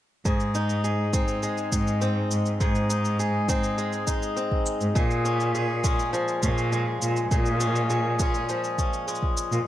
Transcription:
0.25 G#2 G#4, kick, shaker
0.40 shaker
0.55 D#4, shaker
0.69 shaker
0.84 G#4, shaker
1.13 C4 D#4 G#4, kick, shaker
1.28 shaker
1.43 G#3, shaker
1.58 shaker
1.72 G#2 D#4, kick, shaker
1.87 shaker
2.01 C4, shaker
2.31 G#2, shaker
2.46 shaker
2.60 G#2 G#4, kick, shaker
2.75 shaker
2.90 D#4, shaker
3.05 shaker
3.19 G#4, shaker
3.49 C4 D#4 G#4, kick, shaker
3.63 shaker
3.78 G#3, shaker
3.93 shaker
4.07 D#4, kick, shaker
4.22 shaker
4.36 C4, shaker
4.51 kick
4.66 shaker
4.81 G#2, shaker
4.95 A#2 G#4, kick, shaker
5.11 shaker
5.25 C#4, shaker
5.40 shaker
5.55 G#4, shaker
5.84 G#3 C#4 G#4, kick, shaker
5.99 shaker
6.13 F3, shaker
6.28 shaker
6.43 A#2 C#4, kick, shaker
6.58 shaker
6.72 G#3, shaker
7.02 A#2, shaker
7.17 shaker
7.31 A#2 G#4, kick, shaker
7.46 shaker
7.60 C#4, shaker
7.76 shaker
7.90 G#4, shaker
8.19 G#3 C#4 G#4, kick, shaker
8.34 shaker
8.49 F3, shaker
8.64 shaker
8.78 C#4, kick, shaker
8.93 shaker
9.08 G#3, shaker
9.15 shaker
9.23 kick
9.37 shaker
9.52 A#2, shaker

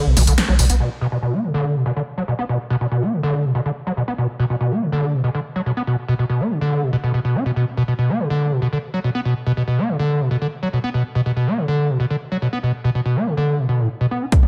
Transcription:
0.06 B1 B2
0.17 B1 B2, open hi-hat, mid tom, tambourine
0.27 B1 D3, closed hi-hat, tambourine
0.38 snare, closed hi-hat, ride, tambourine
0.48 B1 F#3, mid tom
0.59 B1 B2, open hi-hat, tambourine
0.70 B1 B3, closed hi-hat, tambourine
0.80 B2
1.01 B2
1.12 B2
1.22 B2
1.33 B3
1.44 C#3
1.54 D3
1.75 B2
1.86 B2
1.96 D3
2.17 F#3
2.28 B2
2.39 B3
2.49 B2
2.70 B2
2.81 B2
2.91 B2
3.02 B3
3.13 C#3
3.23 D3
3.44 B2
3.55 B2
3.66 D3
3.87 F#3
3.97 B2
4.08 B3
4.18 B2
4.39 B2
4.50 B2
4.60 B2
4.71 B3
4.82 C#3
4.92 D3
5.13 B2
5.24 B2
5.34 D3
5.56 F#3
5.66 B2
5.77 B3
5.87 B2
6.08 B2
6.19 B2
6.29 B2
6.40 B3
6.51 C#3
6.61 D3
6.82 B2
6.93 B2
7.04 B2
7.14 B2
7.25 B2
7.35 D4
7.46 B2
7.56 B2
7.77 B2
7.88 B2
7.99 B2
8.09 B3
8.20 C#3
8.30 D3
8.51 B2
8.62 B2
8.73 D3
8.94 F#3
9.04 B2
9.15 B3
9.25 B2
9.46 B2
9.57 B2
9.68 B2
9.78 B3
9.89 C#3
9.99 D3
10.20 B2
10.31 B2
10.42 D3
10.63 F#3
10.73 B2
10.84 B3
10.94 B2
11.15 B2
11.26 B2
11.36 B2
11.47 B3
11.58 C#3
11.68 D3
11.89 B2
12.00 B2
12.10 D3
12.32 F#3
12.42 B2
12.53 B3
12.63 B2
12.84 B2
12.95 B2
13.05 B2
13.16 B3
13.27 C#3
13.37 D3
13.58 B2
13.69 B2
13.80 A2
14.01 B2
14.11 B3
14.22 D4
14.32 B2, kick, closed hi-hat
14.43 mid tom

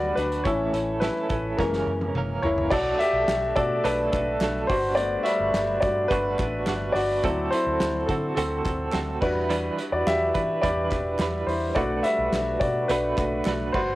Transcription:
Already playing: D2 F#3 G3 A3 B3 D4 F#4 G4 B4 D5
0.15 D2 D4 F#4 B4, snare, closed hi-hat
0.32 closed hi-hat
0.44 A1 A2 E3 A3 C#4 E4 A4 C#5, kick, closed hi-hat
0.73 A1 A3 C#4 E4 A4, closed hi-hat
1.00 A3 C#4 E4 A4 B4, snare, closed hi-hat
1.29 A1 A3 C#4 E4 A4, kick, closed hi-hat
1.57 F#1 F#2 C#3 E3 G#3 A#3 C#4 A#4, kick, snare
1.73 snare
1.87 F#2
2.01 high tom
2.15 F#1 E3 A#3 C#4 A#4, mid tom
2.42 F#1 E3 A#3 C#4 E4 A#4 C#5, floor tom
2.58 floor tom
2.71 B1 B2 F#3 A3 D4 F#4 A4 D5, kick, crash
2.99 A3 G4 A4 E5, closed hi-hat
3.13 B1
3.28 B1, snare, clap, closed hi-hat
3.56 B2 A3 D4 F#4 A4 D5, kick, closed hi-hat
3.84 B1 B2 F#3 A3 D4 A4 B4, closed hi-hat
4.12 B1 A3 D4 A4, kick, clap, closed hi-hat
4.40 B1 F#3 A3 D4 A4, snare, clap, closed hi-hat
4.67 G1 B3 D4 F#4 C5, kick, open hi-hat
4.72 G3
4.95 A3 B3 F#4 D5, closed hi-hat
5.23 G3 D4 F#4 E5, closed hi-hat
5.28 B3
5.40 G1
5.54 G1, snare, clap, closed hi-hat
5.81 G2 F#4 D5, kick, closed hi-hat
6.08 G1 G3 B3 D4 B4, kick, closed hi-hat
6.12 F#4
6.39 A1 B3 D4 F#4, kick, clap, closed hi-hat
6.66 G1 G3 B3 D4 F#4, snare, clap, closed hi-hat
6.92 G1 D4 F#4 D5, snare, open hi-hat
6.97 B3
7.23 D2 D3 F#3 A3 C4 E4 F#4 A4, kick, closed hi-hat
7.50 E4 F#4 A4 C5, closed hi-hat
7.55 C4
7.67 D2
7.80 D2, snare, clap, closed hi-hat
8.06 D3 C4 A4, kick, closed hi-hat
8.10 C4 F#4
8.35 D2 D3 A3 C4 F#4 A4, closed hi-hat
8.64 D2 C4 F#4 A4, kick, clap, closed hi-hat
8.92 D2 A3 C4 F#4 A4, snare, clap, closed hi-hat
9.21 E2 G3 D4 E4 F#4 B4, kick, snare, crash
9.49 E3 G3 D4 E4 B4, closed hi-hat
9.77 D4 E4 B4, closed hi-hat
9.92 E2 F#4 D5
10.07 E2 G4 E5, snare, clap, closed hi-hat
10.34 E3 D4 E4 B4, kick, closed hi-hat
10.61 E2 E3 G3 D4 E4 G4 B4 D5, kick, closed hi-hat
10.90 E1 D4 E4 B4, kick, clap, closed hi-hat
11.19 E2 G3 D4 E4 B4, snare, clap, closed hi-hat
11.47 E2 E4 C5, open hi-hat
11.75 B1 B2 A3 D4 F#4 B4 D5, kick, closed hi-hat
12.03 G3 D4 F#4 B4 E5, closed hi-hat
12.18 B1
12.32 B1, snare, clap, closed hi-hat
12.60 B2 F#4 D5, kick, closed hi-hat
12.88 B1 B2 A3 D4 F#4 B4, closed hi-hat
13.17 B1 A3 D4 F#4 B4, kick, clap, closed hi-hat
13.45 B1 A3 D4 F#4 B4, snare, clap, closed hi-hat
13.72 G1 G3 D4 F#4 B4 C5, kick, crash

